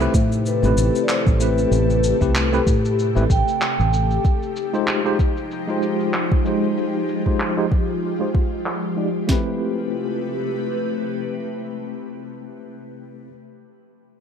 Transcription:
Already playing: C3 A3 G4 A4 C5
0.00 A3 C4 E4 G4 B4, cabasa
0.14 A2, kick, cabasa
0.32 cabasa
0.46 B4, cabasa
0.62 A1 A3 C4 E4 G4 B4, cabasa
0.77 A1, cabasa
0.95 cabasa
1.03 D5
1.09 C5, clap, cabasa
1.27 A1, kick, cabasa
1.39 A3 C4 E4 G4 B4, cabasa
1.58 cabasa
1.71 A1, cabasa
1.90 cabasa
2.04 cabasa
2.21 C2 A3 C4 E4 G4 B4, kick, cabasa
2.35 clap, cabasa
2.53 A3 C4 E4 G4 B4, cabasa
2.67 A2, kick, cabasa
2.85 cabasa
2.99 cabasa
3.15 A1 A3 C4 E4 G4 B4, cabasa
3.30 A1 G5, kick, cabasa
3.48 cabasa
3.62 clap, cabasa
3.79 A1, cabasa
3.93 cabasa
4.11 cabasa
4.24 F3 G#3 D#4, kick, cabasa
4.43 cabasa
4.56 cabasa
4.73 G#3 D#4 F4 G4 C5, cabasa
4.88 clap, cabasa
5.05 G#3 D#4 F4 G4 C5, cabasa
5.19 kick, cabasa
5.37 cabasa
5.51 cabasa
5.68 G#3 D#4 F4 G4 C5, cabasa
5.82 cabasa
6.00 cabasa
6.14 clap, cabasa
6.31 kick, cabasa
6.45 G#3 D#4 F4 G4 C5, cabasa
6.63 cabasa
6.76 F4, cabasa
6.95 cabasa
7.09 cabasa
7.26 G#3 D#4 F4 G4 C5, kick, cabasa
7.40 clap, cabasa
7.57 G#3 D#4 F4 G4 C5, cabasa
7.72 kick, cabasa
7.90 cabasa
8.04 cabasa
8.19 G#3 D#4 F4 G4 C5, cabasa
8.35 kick, cabasa
8.53 cabasa
8.66 clap, cabasa
8.84 cabasa
8.96 G#3 D#4 F4 G4 D5, cabasa
9.16 cabasa
9.27 C3 A3 C4 E4 G4 B4, kick, snare
9.32 B4

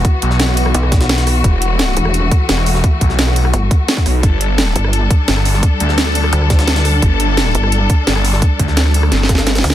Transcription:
Already playing: E3 B3 F#4
0.05 kick, closed hi-hat
0.22 B1, closed hi-hat
0.31 snare
0.40 snare, closed hi-hat
0.48 cross-stick
0.57 closed hi-hat, open hi-hat
0.66 cross-stick
0.74 B1, closed hi-hat
0.83 cross-stick
0.92 kick, snare, closed hi-hat
1.01 snare, closed hi-hat
1.09 snare, closed hi-hat
1.18 snare, closed hi-hat
1.27 cross-stick, closed hi-hat, open hi-hat
1.44 E1 A3, kick, closed hi-hat
1.62 closed hi-hat
1.79 snare, closed hi-hat
1.88 cross-stick
1.97 E1, closed hi-hat
2.05 cross-stick
2.14 closed hi-hat
2.31 kick, closed hi-hat
2.49 E1, snare, closed hi-hat
2.58 cross-stick
2.66 closed hi-hat, open hi-hat
2.75 snare
2.84 kick, closed hi-hat
3.01 B1, kick, closed hi-hat
3.10 snare
3.19 snare, closed hi-hat
3.27 cross-stick
3.36 closed hi-hat, open hi-hat
3.45 cross-stick
3.54 G1, closed hi-hat
3.71 kick, closed hi-hat
3.88 snare, closed hi-hat
3.97 kick, snare
4.06 B1, cross-stick, closed hi-hat, open hi-hat
4.23 G1 G3 D4 A4, kick, closed hi-hat
4.41 closed hi-hat
4.58 snare, closed hi-hat
4.67 cross-stick
4.76 G1, closed hi-hat
4.84 cross-stick
4.93 closed hi-hat
5.11 kick, closed hi-hat
5.28 G1, snare, closed hi-hat
5.37 cross-stick
5.45 closed hi-hat, open hi-hat
5.54 snare
5.63 kick, closed hi-hat
5.80 D2, closed hi-hat
5.89 snare
5.98 snare, closed hi-hat
6.07 cross-stick
6.15 closed hi-hat, open hi-hat
6.24 cross-stick
6.33 D2, closed hi-hat
6.41 cross-stick
6.50 kick, snare, closed hi-hat
6.59 snare, closed hi-hat
6.67 snare, closed hi-hat
6.76 snare, closed hi-hat
6.85 cross-stick, closed hi-hat, open hi-hat
7.02 G1, kick, closed hi-hat
7.20 closed hi-hat
7.37 snare, closed hi-hat
7.46 cross-stick
7.55 G1, closed hi-hat
7.63 cross-stick
7.72 closed hi-hat
7.90 kick, closed hi-hat
8.07 G1, snare, closed hi-hat
8.16 cross-stick
8.25 closed hi-hat, open hi-hat
8.33 snare
8.42 kick, closed hi-hat
8.59 D2, kick, closed hi-hat
8.68 snare
8.77 snare, closed hi-hat
8.86 cross-stick
8.94 closed hi-hat, open hi-hat
9.03 cross-stick
9.12 G1, snare, closed hi-hat
9.23 snare
9.29 kick, snare, closed hi-hat
9.35 snare
9.38 snare, closed hi-hat
9.47 snare, closed hi-hat
9.55 snare, closed hi-hat
9.58 snare
9.64 D2, snare, closed hi-hat, open hi-hat
9.70 snare

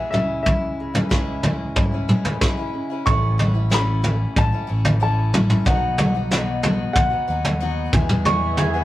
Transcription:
Already playing: E2 B2 E3 G#3 B3 G#4
0.11 C#2 C#3 E3 G#3 C#4 E4 E5, mid tom
0.43 E5, kick, floor tom
0.47 E4
0.80 G#3
0.94 G#3 C#4 E4, floor tom, mid tom
1.09 C#2 C#3 E3 G#3 C#4 E4, kick, snare
1.43 E3 G#3 C#4 E4, floor tom, mid tom
1.76 C#2 G#2 E4, kick, floor tom
1.92 G#3 C#4 E4
2.08 E3 G#3 C#4 E4, mid tom
2.25 floor tom
2.41 C#3 E3 G#3 C#4 E4, kick, snare
2.57 G#3 C#4 E4
2.73 C#3
2.90 G#3 C#4 E4
3.06 A1 A2 E3 A3 C#4 E4 A4 E5 C#6, kick, floor tom
3.38 E3 A3 C#4 E4, floor tom
3.54 A3 C#4 E4
3.70 A2 E3 A3 C#4 E4, snare
3.74 B5
4.02 E3 A3 C#4 E4, floor tom
4.36 A1 A5, kick, floor tom
4.52 A3 C#4 E4
4.67 A1 E3 A3 C#4 E4
4.85 floor tom
5.00 A2 E3 A3 C#4 E4 A5
5.33 E3 A3 C#4 E4, floor tom, mid tom
5.49 A3 C#4 E4, mid tom
5.65 B1 B2 F#3 B3 D#4 F#4 D#5 F#5, kick, floor tom
5.98 F#3 B3 D#4 F#4, floor tom
6.14 B3 D#4 F#4
6.31 B2 F#3 B3 D#4 F#4, snare
6.62 F#3 B3 D#4 F#4, floor tom
6.93 B1 F#5, kick, floor tom
7.10 B3 D#4 F#4
7.28 D#2 F#3 B3 D#4 F#4
7.45 floor tom
7.60 B2 F#3 B3 D#4 F#4
7.92 E2 E3 G#3 B3 E4 G#4 E5, kick, floor tom, mid tom
8.09 E3 G#3 B3 G#4, mid tom
8.25 E2 B2 E3 G#3 B3 G#4 E5 C#6, floor tom
8.57 E3 G#3 B3 G#4, floor tom
8.73 E3 G#3 B3 G#4

